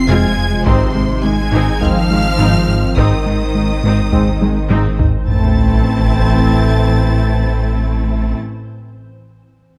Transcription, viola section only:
0, 0, Header, 1, 2, 480
1, 0, Start_track
1, 0, Key_signature, 0, "minor"
1, 0, Tempo, 576923
1, 553, Time_signature, 4, 2, 24, 8
1, 8138, End_track
2, 0, Start_track
2, 0, Title_t, "Viola section"
2, 0, Program_c, 0, 48
2, 71, Note_on_c, 0, 60, 79
2, 71, Note_on_c, 0, 65, 96
2, 295, Note_off_c, 0, 60, 0
2, 295, Note_off_c, 0, 65, 0
2, 549, Note_on_c, 0, 60, 92
2, 549, Note_on_c, 0, 63, 85
2, 774, Note_off_c, 0, 60, 0
2, 774, Note_off_c, 0, 63, 0
2, 797, Note_on_c, 0, 56, 58
2, 798, Note_on_c, 0, 60, 64
2, 864, Note_off_c, 0, 56, 0
2, 864, Note_off_c, 0, 60, 0
2, 1035, Note_on_c, 0, 56, 64
2, 1037, Note_on_c, 0, 51, 57
2, 1102, Note_off_c, 0, 56, 0
2, 1103, Note_off_c, 0, 51, 0
2, 1272, Note_on_c, 0, 60, 82
2, 1272, Note_on_c, 0, 63, 91
2, 1496, Note_off_c, 0, 60, 0
2, 1496, Note_off_c, 0, 63, 0
2, 1511, Note_on_c, 0, 56, 59
2, 1514, Note_on_c, 0, 60, 56
2, 1578, Note_off_c, 0, 56, 0
2, 1581, Note_off_c, 0, 60, 0
2, 1755, Note_on_c, 0, 51, 59
2, 1755, Note_on_c, 0, 56, 62
2, 1822, Note_off_c, 0, 51, 0
2, 1822, Note_off_c, 0, 56, 0
2, 1989, Note_on_c, 0, 60, 79
2, 1991, Note_on_c, 0, 63, 70
2, 2214, Note_off_c, 0, 60, 0
2, 2215, Note_off_c, 0, 63, 0
2, 2475, Note_on_c, 0, 63, 83
2, 2477, Note_on_c, 0, 60, 78
2, 2697, Note_off_c, 0, 63, 0
2, 2698, Note_off_c, 0, 60, 0
2, 2717, Note_on_c, 0, 56, 59
2, 2717, Note_on_c, 0, 60, 64
2, 2783, Note_off_c, 0, 56, 0
2, 2783, Note_off_c, 0, 60, 0
2, 2958, Note_on_c, 0, 56, 55
2, 2960, Note_on_c, 0, 51, 54
2, 3024, Note_off_c, 0, 56, 0
2, 3026, Note_off_c, 0, 51, 0
2, 3202, Note_on_c, 0, 63, 69
2, 3203, Note_on_c, 0, 60, 70
2, 3421, Note_off_c, 0, 60, 0
2, 3421, Note_off_c, 0, 63, 0
2, 3438, Note_on_c, 0, 60, 54
2, 3439, Note_on_c, 0, 56, 57
2, 3504, Note_off_c, 0, 60, 0
2, 3505, Note_off_c, 0, 56, 0
2, 3676, Note_on_c, 0, 56, 65
2, 3677, Note_on_c, 0, 51, 60
2, 3743, Note_off_c, 0, 56, 0
2, 3744, Note_off_c, 0, 51, 0
2, 3913, Note_on_c, 0, 60, 80
2, 3914, Note_on_c, 0, 63, 79
2, 4137, Note_off_c, 0, 60, 0
2, 4137, Note_off_c, 0, 63, 0
2, 4396, Note_on_c, 0, 64, 78
2, 4400, Note_on_c, 0, 60, 79
2, 6947, Note_off_c, 0, 64, 0
2, 6949, Note_off_c, 0, 60, 0
2, 8138, End_track
0, 0, End_of_file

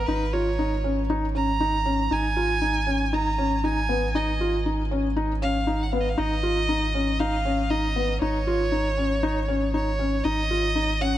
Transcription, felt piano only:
0, 0, Header, 1, 2, 480
1, 0, Start_track
1, 0, Tempo, 508475
1, 77, Time_signature, 4, 2, 24, 8
1, 10553, End_track
2, 0, Start_track
2, 0, Title_t, "Felt piano"
2, 0, Program_c, 0, 0
2, 77, Note_on_c, 0, 63, 89
2, 215, Note_off_c, 0, 63, 0
2, 314, Note_on_c, 0, 65, 82
2, 452, Note_off_c, 0, 65, 0
2, 555, Note_on_c, 0, 63, 78
2, 693, Note_off_c, 0, 63, 0
2, 796, Note_on_c, 0, 61, 78
2, 934, Note_off_c, 0, 61, 0
2, 1035, Note_on_c, 0, 63, 98
2, 1173, Note_off_c, 0, 63, 0
2, 1274, Note_on_c, 0, 61, 79
2, 1412, Note_off_c, 0, 61, 0
2, 1514, Note_on_c, 0, 63, 89
2, 1653, Note_off_c, 0, 63, 0
2, 1753, Note_on_c, 0, 61, 83
2, 1892, Note_off_c, 0, 61, 0
2, 1990, Note_on_c, 0, 63, 88
2, 2130, Note_off_c, 0, 63, 0
2, 2232, Note_on_c, 0, 65, 77
2, 2371, Note_off_c, 0, 65, 0
2, 2469, Note_on_c, 0, 63, 78
2, 2609, Note_off_c, 0, 63, 0
2, 2707, Note_on_c, 0, 61, 78
2, 2848, Note_off_c, 0, 61, 0
2, 2952, Note_on_c, 0, 63, 91
2, 3091, Note_off_c, 0, 63, 0
2, 3194, Note_on_c, 0, 61, 81
2, 3333, Note_off_c, 0, 61, 0
2, 3434, Note_on_c, 0, 63, 87
2, 3572, Note_off_c, 0, 63, 0
2, 3673, Note_on_c, 0, 59, 83
2, 3812, Note_off_c, 0, 59, 0
2, 3916, Note_on_c, 0, 63, 99
2, 4054, Note_off_c, 0, 63, 0
2, 4159, Note_on_c, 0, 65, 84
2, 4296, Note_off_c, 0, 65, 0
2, 4398, Note_on_c, 0, 63, 80
2, 4536, Note_off_c, 0, 63, 0
2, 4638, Note_on_c, 0, 61, 86
2, 4775, Note_off_c, 0, 61, 0
2, 4876, Note_on_c, 0, 63, 95
2, 5014, Note_off_c, 0, 63, 0
2, 5117, Note_on_c, 0, 61, 85
2, 5255, Note_off_c, 0, 61, 0
2, 5353, Note_on_c, 0, 63, 88
2, 5492, Note_off_c, 0, 63, 0
2, 5596, Note_on_c, 0, 59, 85
2, 5734, Note_off_c, 0, 59, 0
2, 5829, Note_on_c, 0, 63, 102
2, 5969, Note_off_c, 0, 63, 0
2, 6070, Note_on_c, 0, 65, 84
2, 6210, Note_off_c, 0, 65, 0
2, 6314, Note_on_c, 0, 63, 87
2, 6452, Note_off_c, 0, 63, 0
2, 6557, Note_on_c, 0, 61, 80
2, 6694, Note_off_c, 0, 61, 0
2, 6797, Note_on_c, 0, 63, 98
2, 6935, Note_off_c, 0, 63, 0
2, 7037, Note_on_c, 0, 61, 86
2, 7175, Note_off_c, 0, 61, 0
2, 7272, Note_on_c, 0, 63, 87
2, 7411, Note_off_c, 0, 63, 0
2, 7516, Note_on_c, 0, 59, 80
2, 7654, Note_off_c, 0, 59, 0
2, 7756, Note_on_c, 0, 63, 94
2, 7894, Note_off_c, 0, 63, 0
2, 7997, Note_on_c, 0, 65, 89
2, 8134, Note_off_c, 0, 65, 0
2, 8231, Note_on_c, 0, 63, 82
2, 8371, Note_off_c, 0, 63, 0
2, 8472, Note_on_c, 0, 61, 81
2, 8611, Note_off_c, 0, 61, 0
2, 8713, Note_on_c, 0, 63, 100
2, 8852, Note_off_c, 0, 63, 0
2, 8953, Note_on_c, 0, 61, 84
2, 9092, Note_off_c, 0, 61, 0
2, 9193, Note_on_c, 0, 63, 85
2, 9332, Note_off_c, 0, 63, 0
2, 9434, Note_on_c, 0, 61, 79
2, 9573, Note_off_c, 0, 61, 0
2, 9675, Note_on_c, 0, 63, 96
2, 9813, Note_off_c, 0, 63, 0
2, 9917, Note_on_c, 0, 65, 79
2, 10054, Note_off_c, 0, 65, 0
2, 10152, Note_on_c, 0, 63, 81
2, 10291, Note_off_c, 0, 63, 0
2, 10394, Note_on_c, 0, 61, 81
2, 10532, Note_off_c, 0, 61, 0
2, 10553, End_track
0, 0, End_of_file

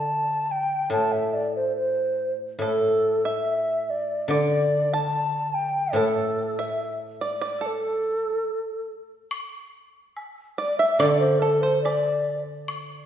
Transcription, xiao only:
0, 0, Header, 1, 2, 480
1, 0, Start_track
1, 0, Tempo, 839161
1, 525, Time_signature, 2, 2, 24, 8
1, 7469, End_track
2, 0, Start_track
2, 0, Title_t, "Xiao"
2, 0, Program_c, 0, 77
2, 0, Note_on_c, 0, 81, 82
2, 293, Note_on_c, 0, 79, 79
2, 302, Note_off_c, 0, 81, 0
2, 525, Note_off_c, 0, 79, 0
2, 528, Note_on_c, 0, 81, 86
2, 642, Note_on_c, 0, 76, 73
2, 651, Note_off_c, 0, 81, 0
2, 768, Note_on_c, 0, 74, 76
2, 776, Note_off_c, 0, 76, 0
2, 888, Note_off_c, 0, 74, 0
2, 892, Note_on_c, 0, 72, 68
2, 1002, Note_off_c, 0, 72, 0
2, 1006, Note_on_c, 0, 72, 75
2, 1348, Note_off_c, 0, 72, 0
2, 1502, Note_on_c, 0, 69, 74
2, 1862, Note_on_c, 0, 76, 73
2, 1870, Note_off_c, 0, 69, 0
2, 2232, Note_on_c, 0, 74, 64
2, 2241, Note_off_c, 0, 76, 0
2, 2462, Note_off_c, 0, 74, 0
2, 2468, Note_on_c, 0, 74, 91
2, 2822, Note_on_c, 0, 81, 87
2, 2831, Note_off_c, 0, 74, 0
2, 3171, Note_on_c, 0, 79, 75
2, 3179, Note_off_c, 0, 81, 0
2, 3416, Note_on_c, 0, 69, 81
2, 3424, Note_off_c, 0, 79, 0
2, 3777, Note_on_c, 0, 76, 70
2, 3786, Note_off_c, 0, 69, 0
2, 3977, Note_off_c, 0, 76, 0
2, 4145, Note_on_c, 0, 74, 70
2, 4248, Note_off_c, 0, 74, 0
2, 4262, Note_on_c, 0, 74, 67
2, 4385, Note_on_c, 0, 69, 80
2, 4393, Note_off_c, 0, 74, 0
2, 5100, Note_off_c, 0, 69, 0
2, 6055, Note_on_c, 0, 74, 82
2, 6165, Note_off_c, 0, 74, 0
2, 6168, Note_on_c, 0, 76, 81
2, 6293, Note_on_c, 0, 74, 90
2, 6302, Note_off_c, 0, 76, 0
2, 6329, Note_on_c, 0, 76, 70
2, 6337, Note_off_c, 0, 74, 0
2, 6344, Note_on_c, 0, 74, 95
2, 6353, Note_off_c, 0, 76, 0
2, 6403, Note_off_c, 0, 74, 0
2, 6406, Note_on_c, 0, 72, 80
2, 6519, Note_on_c, 0, 69, 71
2, 6528, Note_off_c, 0, 72, 0
2, 6644, Note_on_c, 0, 72, 77
2, 6652, Note_off_c, 0, 69, 0
2, 6757, Note_off_c, 0, 72, 0
2, 6761, Note_on_c, 0, 74, 79
2, 7101, Note_off_c, 0, 74, 0
2, 7469, End_track
0, 0, End_of_file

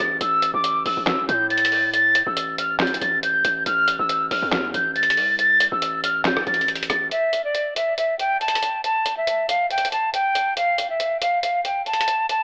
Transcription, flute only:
0, 0, Header, 1, 2, 480
1, 0, Start_track
1, 0, Key_signature, 0, "minor"
1, 0, Tempo, 431655
1, 231, Time_signature, 4, 2, 24, 8
1, 13824, End_track
2, 0, Start_track
2, 0, Title_t, "Flute"
2, 0, Program_c, 0, 73
2, 0, Note_on_c, 0, 93, 82
2, 218, Note_off_c, 0, 93, 0
2, 232, Note_on_c, 0, 88, 111
2, 577, Note_off_c, 0, 88, 0
2, 601, Note_on_c, 0, 86, 85
2, 932, Note_off_c, 0, 86, 0
2, 955, Note_on_c, 0, 88, 82
2, 1180, Note_off_c, 0, 88, 0
2, 1192, Note_on_c, 0, 88, 89
2, 1418, Note_off_c, 0, 88, 0
2, 1433, Note_on_c, 0, 91, 84
2, 1659, Note_off_c, 0, 91, 0
2, 1672, Note_on_c, 0, 93, 91
2, 2123, Note_off_c, 0, 93, 0
2, 2151, Note_on_c, 0, 93, 108
2, 2496, Note_off_c, 0, 93, 0
2, 2517, Note_on_c, 0, 88, 78
2, 2849, Note_off_c, 0, 88, 0
2, 2872, Note_on_c, 0, 89, 81
2, 3098, Note_off_c, 0, 89, 0
2, 3113, Note_on_c, 0, 91, 83
2, 3339, Note_off_c, 0, 91, 0
2, 3353, Note_on_c, 0, 93, 77
2, 3579, Note_off_c, 0, 93, 0
2, 3594, Note_on_c, 0, 91, 89
2, 4044, Note_off_c, 0, 91, 0
2, 4071, Note_on_c, 0, 89, 103
2, 4416, Note_off_c, 0, 89, 0
2, 4438, Note_on_c, 0, 88, 76
2, 4770, Note_off_c, 0, 88, 0
2, 4790, Note_on_c, 0, 89, 86
2, 5017, Note_off_c, 0, 89, 0
2, 5031, Note_on_c, 0, 89, 78
2, 5258, Note_off_c, 0, 89, 0
2, 5272, Note_on_c, 0, 91, 77
2, 5499, Note_off_c, 0, 91, 0
2, 5512, Note_on_c, 0, 93, 91
2, 5963, Note_off_c, 0, 93, 0
2, 5991, Note_on_c, 0, 93, 103
2, 6336, Note_off_c, 0, 93, 0
2, 6357, Note_on_c, 0, 88, 83
2, 6689, Note_off_c, 0, 88, 0
2, 6711, Note_on_c, 0, 89, 90
2, 6938, Note_off_c, 0, 89, 0
2, 6952, Note_on_c, 0, 91, 81
2, 7179, Note_off_c, 0, 91, 0
2, 7190, Note_on_c, 0, 93, 81
2, 7454, Note_off_c, 0, 93, 0
2, 7670, Note_on_c, 0, 93, 83
2, 7897, Note_off_c, 0, 93, 0
2, 7909, Note_on_c, 0, 76, 101
2, 8255, Note_off_c, 0, 76, 0
2, 8278, Note_on_c, 0, 74, 80
2, 8610, Note_off_c, 0, 74, 0
2, 8632, Note_on_c, 0, 76, 79
2, 8858, Note_off_c, 0, 76, 0
2, 8871, Note_on_c, 0, 76, 84
2, 9098, Note_off_c, 0, 76, 0
2, 9110, Note_on_c, 0, 79, 79
2, 9337, Note_off_c, 0, 79, 0
2, 9351, Note_on_c, 0, 81, 89
2, 9802, Note_off_c, 0, 81, 0
2, 9831, Note_on_c, 0, 81, 99
2, 10177, Note_off_c, 0, 81, 0
2, 10198, Note_on_c, 0, 76, 75
2, 10530, Note_off_c, 0, 76, 0
2, 10553, Note_on_c, 0, 77, 77
2, 10779, Note_off_c, 0, 77, 0
2, 10793, Note_on_c, 0, 79, 80
2, 11019, Note_off_c, 0, 79, 0
2, 11031, Note_on_c, 0, 81, 72
2, 11258, Note_off_c, 0, 81, 0
2, 11274, Note_on_c, 0, 79, 80
2, 11724, Note_off_c, 0, 79, 0
2, 11753, Note_on_c, 0, 77, 105
2, 12097, Note_off_c, 0, 77, 0
2, 12120, Note_on_c, 0, 76, 75
2, 12451, Note_off_c, 0, 76, 0
2, 12472, Note_on_c, 0, 77, 82
2, 12698, Note_off_c, 0, 77, 0
2, 12710, Note_on_c, 0, 77, 72
2, 12937, Note_off_c, 0, 77, 0
2, 12952, Note_on_c, 0, 79, 73
2, 13178, Note_off_c, 0, 79, 0
2, 13191, Note_on_c, 0, 81, 86
2, 13642, Note_off_c, 0, 81, 0
2, 13672, Note_on_c, 0, 81, 98
2, 13824, Note_off_c, 0, 81, 0
2, 13824, End_track
0, 0, End_of_file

